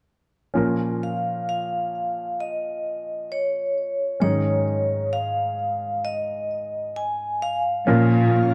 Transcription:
0.54 A#2 F3 C#4 F4 A#4
1.03 F5
1.49 F5
2.40 D#5
3.32 C#5
4.20 G#2 D#3 C#4 D#4 G#4 C#5
5.13 F5
6.05 D#5
6.96 G#5
7.42 F5
7.87 A#2 F3 A#3 C#4 F4 A#4

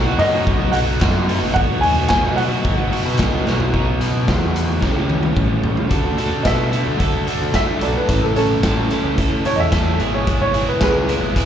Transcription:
Already playing: B1 B2 F#3 F#5
0.05 B3 D#4 F#4
0.19 F#2 F#3 B3 D#4 F#4 D#5, open hi-hat
0.32 B3 D#4 F#4
0.47 kick
0.59 B1 D#4 F#4
0.64 B3
0.71 F#3 B3 F#5, clap, open hi-hat
0.76 D#4 F#4
0.87 B3 D#4 F#4
1.00 F#2 B2 F#3 B3 D#4 F#4, kick, snare, clap
1.28 F#3 B3 D#4 F#4, open hi-hat
1.43 G#1
1.54 B2 F#3 B3 D#4 F#4 F#5, kick
1.81 D#2 F#3 B3 D#4 F#4 G#5, open hi-hat
1.95 B3 D#4 F#4
2.09 B2 F#3 B3 D#4 F#4 G#5, kick, snare, clap
2.23 B2 B3 D#4 F#4
2.36 F#3 B3 D#4 F#4 F#5, open hi-hat
2.50 B3 D#4 F#4
2.65 G#1, kick
2.76 B3 D#4 F#4
2.89 F#3 B3 D#4 F#4, open hi-hat
3.03 B2 B3 D#4 F#4
3.17 C#2 B2 F#3 B3 D#4 F#4, kick, snare, clap
3.45 B1 F#3 B3 D#4 F#4, snare
3.60 floor tom
3.72 B1 B2 F#3 B3 D#4, kick
3.76 F#4
4.00 B2, closed hi-hat
4.28 E2, kick, snare
4.56 closed hi-hat
4.81 A1 A2 E3 G3 C#4 G4, kick, snare
4.96 C#2
5.09 high tom
5.23 high tom
5.36 A1, kick, mid tom
5.63 A1, floor tom
5.77 floor tom
5.89 D2 D3 D4 F#4 A4, kick, closed hi-hat
6.04 D2
6.17 D3 D4 F#4 A4, closed hi-hat
6.43 B2 D3 D4 F#4 A4 D#5 E5, kick, snare, closed hi-hat
6.71 D3 D4 F#4 A4, closed hi-hat
6.86 D2
6.97 D3 D4 F#4 A4, kick, closed hi-hat
7.26 D3 D4 F#4 A4, closed hi-hat
7.41 D2
7.53 D3 D4 F#4 A4 E5, kick, snare, closed hi-hat
7.81 B1 D3 D4 F#4 A4 D5, closed hi-hat
7.97 B4
8.07 A1 A2 A3 C#4 E4 A4, kick, closed hi-hat
8.21 A1 A4
8.35 A2 A3 C#4 E4 A4, closed hi-hat
8.63 A1 A2 A3 C#4 E4 A4, kick, snare, closed hi-hat
8.90 A2 A3 C#4 E4 A4, closed hi-hat
9.04 C#2
9.17 A2 A3 C#4 E4 A4, kick, closed hi-hat
9.45 A2 A3 C#4 E4 A4 C#5, closed hi-hat
9.56 E2 D#5
9.60 E5
9.72 A2 A3 C#4 E4 A4, kick, snare, closed hi-hat
10.00 G#1 G#3 B3 E4 G#4, closed hi-hat
10.15 C#5
10.27 G#3 B3 E4 G#4, kick, closed hi-hat
10.41 G#1 C#5
10.53 G#3 B3 E4 G#4, closed hi-hat
10.69 B4
10.80 C#2 G#3 B3 E4 G#4 B4, kick, snare, closed hi-hat
11.08 G#3 B3 E4 G#4, closed hi-hat
11.22 G#1
11.35 G#3 B3 E4 G#4, kick, closed hi-hat

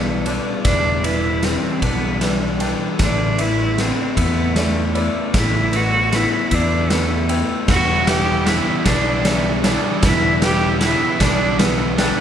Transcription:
Already playing: B1 E3 G3 B3 D4 E4 B4 D5
0.26 E3 G3 B3 D4 E4 B4 D5, ride
0.65 E1 E3 G3 B3 D4 E4 B4, kick, snare, ride
1.04 E3 G3 B3 E4 B4, ride
1.43 E3 G3 B3 C4 E4 B4, snare, ride
1.82 B1 E3 G3 B3 D4 E4 B4, kick, ride
2.21 E3 G3 B4, snare, ride
2.60 E3 G3 B3 D4 E4 B4 G5, ride
2.99 A1 A3 B3 D4 E4 B4, kick, snare, ride
3.38 A3 B3 E4 B4 E5, ride
3.78 A3 B3 C4 E4 B4, snare, ride
4.17 E2 A3 B3 E4 B4, kick, ride
4.56 A3 D5, snare, ride
4.95 A3 B3 E4 B4 D5, ride
5.34 A1 A3 B3 E4 B4, kick, snare, ride
5.73 A3 B3 E4 F#4 B4, ride
6.12 A3 B3 E4 B4, snare, ride
6.51 E2 A3 B3 D4 E4 B4, kick, ride
6.90 A3 B3 B4, snare, ride
7.29 A3 B3 E4 B4 G5, ride
7.68 E1 E3 G3 B3 E4 F#4 B4, kick, snare, crash
8.07 E3 G3 B3 E4 G4 B4 E5, snare, ride
8.47 E3 G3 B3 E4 B4, snare, ride
8.86 B1 E3 G3 B3 D4 E4 B4, kick, snare, ride
9.25 E3 B3 D5, snare, ride
9.64 E3 G3 B3 D4 E4 B4 D5, snare, ride
10.03 E1 E3 G3 B3 E4 B4, kick, snare, ride
10.42 E3 G3 B3 E4 G4 B4, snare, ride
10.80 E3 G3 B3 E4 B4, snare, ride
11.20 B1 E3 G3 B3 D4 E4 B4, kick, snare, ride
11.59 E3 B3 B4, snare, ride
11.98 E3 G3 B3 D4 E4 B4 G5, snare, ride

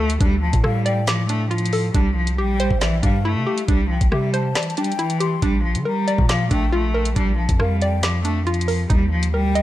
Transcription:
Already playing: D2 A3 D4 F4 D5 D6, impact
0.00 A4
0.10 closed hi-hat
0.21 D2 G3 D4, kick, closed hi-hat
0.42 F3 A5
0.53 A2, kick, closed hi-hat
0.64 A2 G3 A4 F5, cross-stick
0.86 D5 G5, closed hi-hat
1.07 F3 D6, snare, closed hi-hat
1.29 A3 D4, closed hi-hat
1.51 F3 F4, closed hi-hat
1.58 closed hi-hat
1.66 closed hi-hat
1.73 A4, open hi-hat
1.94 C2 G3 D4, kick, closed hi-hat
2.16 F3
2.27 closed hi-hat
2.38 A#1 G3 G4 G5
2.60 C5, closed hi-hat
2.71 A#1, kick
2.81 E3 D5 E5, snare, closed hi-hat
3.03 G2 G3 D4 F5, kick, closed hi-hat
3.25 A3 E4
3.36 C3
3.47 G4
3.58 closed hi-hat
3.68 C2 G3 D4, kick, closed hi-hat
3.90 F3 G5
4.01 C2, kick, closed hi-hat
4.12 C3 G3 G4 E5, cross-stick
4.34 C5 A5, closed hi-hat
4.55 E3 D5, snare, closed hi-hat
4.63 closed hi-hat
4.70 closed hi-hat
4.77 G3 D4 G5, closed hi-hat
4.84 closed hi-hat
4.92 closed hi-hat
4.99 E3 E4, closed hi-hat
5.10 closed hi-hat
5.20 G4 C6, closed hi-hat
5.42 A#1 G3 D4, kick, closed hi-hat
5.64 F3
5.75 D3, closed hi-hat
5.85 G3 A#4 A#5
6.08 D5, closed hi-hat
6.18 A#2, kick
6.29 F3 F5 D6, snare, closed hi-hat
6.51 A#1 A3 D4 G5, kick, closed hi-hat
6.72 A3 F4
6.94 A#4
7.05 closed hi-hat
7.16 A#1 G3 D4, kick, closed hi-hat
7.38 F3 A5
7.49 F2, kick, closed hi-hat
7.59 F2 G3 A#4 F5, cross-stick
7.82 D5 G5, closed hi-hat
8.03 F3 D6, snare, closed hi-hat
8.25 A3 D4, closed hi-hat
8.47 F3 F4, closed hi-hat
8.54 closed hi-hat
8.61 closed hi-hat
8.68 A#4, open hi-hat
8.90 D#2 G3 D#4, kick, closed hi-hat
9.12 F3
9.23 closed hi-hat
9.34 D2 G3 A#4 G5
9.55 D#5, closed hi-hat

